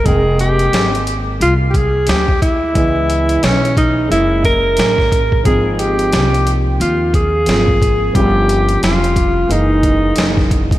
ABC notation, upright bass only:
X:1
M:4/4
L:1/8
Q:"Swing 16ths" 1/4=89
K:Fm
V:1 name="Upright bass" clef=bass
F,,,2 A,,,2 C,,2 =D,,2 | D,,2 _C,,2 _G,,,2 =A,,,2 | A,,,2 C,,2 E,,2 A,,,2 | G,,,2 F,,,2 _G,,,2 G,,,2 |]